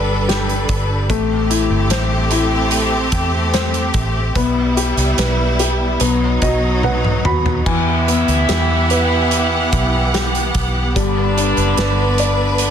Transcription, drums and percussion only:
0.29 snare, closed hi-hat
0.49 closed hi-hat
0.69 kick, closed hi-hat
1.10 kick, closed hi-hat
1.51 closed hi-hat
1.90 snare, closed hi-hat
2.31 closed hi-hat
2.71 closed hi-hat
3.12 kick, closed hi-hat
3.54 snare, closed hi-hat
3.74 closed hi-hat
3.94 kick, closed hi-hat
4.35 kick, closed hi-hat
4.77 closed hi-hat
4.97 closed hi-hat
5.18 snare, closed hi-hat
5.59 closed hi-hat
6.00 closed hi-hat
6.42 kick, closed hi-hat
6.83 high tom
7.04 mid tom
7.25 mid tom
7.46 floor tom
7.66 kick, crash
8.08 closed hi-hat
8.28 closed hi-hat
8.49 snare, closed hi-hat
8.90 closed hi-hat
9.31 closed hi-hat
9.73 kick, closed hi-hat
10.14 snare, closed hi-hat
10.35 closed hi-hat
10.54 kick, closed hi-hat
10.96 kick, closed hi-hat
11.38 closed hi-hat
11.57 closed hi-hat
11.77 snare, closed hi-hat
12.18 closed hi-hat
12.58 closed hi-hat

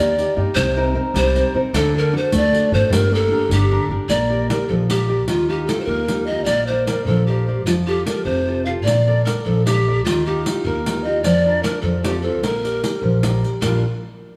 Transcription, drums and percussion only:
0.19 riq
0.57 riq
1.16 riq
1.36 riq
1.74 riq
2.32 riq
2.54 riq
2.93 riq
3.51 riq
4.10 riq
4.50 riq
4.90 riq
5.28 riq
5.69 riq
6.08 riq
6.46 riq
6.87 riq
7.67 riq
8.07 riq
8.87 riq
9.27 riq
9.67 riq
10.07 riq
10.46 riq
10.86 riq
11.24 riq
11.64 riq
12.04 riq
12.43 riq
12.65 riq
12.84 riq
13.23 riq
13.44 riq
13.62 riq

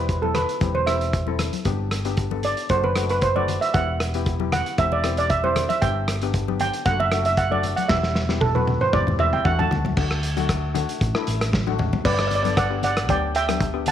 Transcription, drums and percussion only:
0.09 kick, closed hi-hat
0.23 high conga
0.35 cross-stick, closed hi-hat, low conga
0.49 closed hi-hat
0.61 kick, closed hi-hat, high conga
0.75 low conga
0.87 cross-stick, closed hi-hat
1.01 closed hi-hat
1.13 kick, closed hi-hat
1.27 high conga
1.39 cross-stick, closed hi-hat, low conga
1.53 closed hi-hat, high conga
1.65 kick, closed hi-hat
1.91 cross-stick, closed hi-hat
2.05 closed hi-hat
2.17 kick, closed hi-hat
2.31 high conga
2.43 closed hi-hat, low conga
2.57 closed hi-hat
2.69 kick, closed hi-hat
2.83 low conga
2.96 cross-stick, closed hi-hat
3.09 closed hi-hat
3.21 kick, closed hi-hat
3.36 high conga
3.48 closed hi-hat, low conga
3.62 closed hi-hat
3.74 kick, closed hi-hat
4.00 cross-stick, closed hi-hat
4.14 closed hi-hat
4.26 kick, closed hi-hat
4.40 high conga
4.52 cross-stick, closed hi-hat, low conga
4.66 closed hi-hat
4.78 kick, closed hi-hat
4.92 low conga
5.04 cross-stick, closed hi-hat
5.17 closed hi-hat
5.30 kick, closed hi-hat
5.44 high conga
5.56 cross-stick, closed hi-hat, low conga
5.70 closed hi-hat, high conga
5.82 kick, closed hi-hat
6.08 cross-stick, closed hi-hat
6.21 closed hi-hat
6.34 kick, closed hi-hat
6.48 high conga
6.60 closed hi-hat, low conga
6.74 closed hi-hat
6.85 kick, closed hi-hat
7.00 low conga
7.12 cross-stick, closed hi-hat
7.25 closed hi-hat
7.37 kick, closed hi-hat
7.52 high conga
7.63 closed hi-hat, low conga
7.77 closed hi-hat, high conga
7.89 kick, snare
8.03 snare
8.15 snare
8.29 snare
8.41 kick, high tom
8.55 high tom, high conga
8.67 high tom, low conga
8.81 mid tom
8.93 kick, mid tom
9.07 mid tom, low conga
9.19 mid tom
9.33 mid tom
9.45 kick, mid tom
9.59 floor tom, high conga
9.71 floor tom, low conga
9.85 floor tom, high conga
9.97 kick, crash
10.11 cross-stick
10.23 closed hi-hat
10.37 closed hi-hat, high conga
10.49 kick, cross-stick, closed hi-hat
10.75 closed hi-hat, high conga, low conga
10.89 closed hi-hat
11.01 kick, closed hi-hat
11.15 cross-stick
11.27 closed hi-hat
11.41 cross-stick, closed hi-hat
11.53 kick, snare
11.67 high conga
11.79 mid tom, low conga
11.93 floor tom, high conga
12.05 kick, crash
12.19 cross-stick
12.31 closed hi-hat, low conga
12.45 closed hi-hat, high conga
12.57 kick, cross-stick, closed hi-hat
12.83 closed hi-hat, low conga
12.97 cross-stick, closed hi-hat
13.09 kick, closed hi-hat, high conga
13.35 closed hi-hat
13.49 cross-stick, closed hi-hat, high conga
13.60 kick, closed hi-hat
13.86 closed hi-hat, low conga

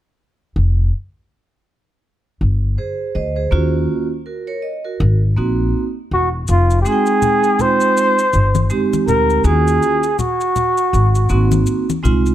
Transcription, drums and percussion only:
6.48 maracas
6.71 maracas
6.86 maracas
7.06 maracas
7.22 low conga, maracas
7.43 maracas
7.59 low conga, maracas
7.80 maracas
7.97 maracas
8.19 maracas
8.33 maracas
8.55 high conga, maracas
8.70 maracas
8.93 high conga, maracas
9.08 low conga, maracas
9.30 maracas
9.44 maracas
9.68 maracas
9.83 maracas
10.03 maracas
10.19 low conga, maracas
10.41 maracas
10.56 low conga, maracas
10.78 maracas
10.94 maracas
11.15 maracas
11.29 maracas
11.52 high conga, maracas
11.66 maracas
11.90 high conga, maracas
12.05 low conga, maracas
12.26 maracas

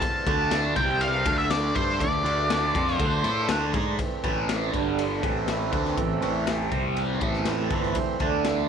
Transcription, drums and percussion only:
0.02 kick, ride
0.27 kick, ride
0.51 snare, ride
0.76 kick, ride
1.01 ride
1.25 kick, ride
1.38 snare
1.51 snare, ride
1.76 kick, ride
2.00 kick, ride
2.26 ride
2.50 snare, ride
2.75 kick, ride
2.88 snare
2.99 kick, ride
3.24 ride
3.49 snare, ride
3.74 kick, ride
3.99 kick, ride
4.24 kick, ride
4.49 snare, ride
4.74 kick, ride
4.99 ride
5.23 kick, ride
5.48 snare, ride
5.73 kick, ride
5.85 snare
5.97 kick, ride
6.22 ride
6.47 snare, ride
6.72 kick, ride
6.96 ride
7.21 kick, ride
7.33 snare
7.45 snare, ride
7.70 kick, ride
7.83 snare
7.95 kick, ride
8.20 kick, ride
8.45 snare, ride

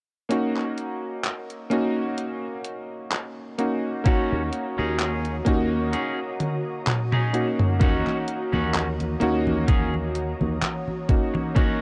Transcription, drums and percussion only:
0.31 closed hi-hat
0.56 clap
0.78 closed hi-hat
1.24 clap, closed hi-hat
1.50 closed hi-hat
1.71 closed hi-hat
2.18 closed hi-hat
2.65 closed hi-hat
3.12 clap, closed hi-hat
3.59 closed hi-hat
4.06 kick, closed hi-hat
4.53 closed hi-hat
4.99 clap, closed hi-hat
5.25 closed hi-hat
5.46 kick, closed hi-hat
5.93 closed hi-hat
6.40 closed hi-hat, high tom
6.87 clap, closed hi-hat, mid tom
7.12 mid tom
7.34 closed hi-hat
7.60 mid tom
7.81 kick, closed hi-hat, high conga
8.07 clap, high conga
8.28 closed hi-hat
8.53 high conga
8.74 clap, closed hi-hat, high conga
9.00 closed hi-hat, high conga
9.21 closed hi-hat
9.47 high conga
9.68 kick, closed hi-hat, high conga
9.94 high conga
10.15 closed hi-hat
10.41 high conga
10.62 clap, closed hi-hat, high conga
10.88 high conga
11.09 kick, closed hi-hat
11.35 high conga
11.56 kick, closed hi-hat, high conga

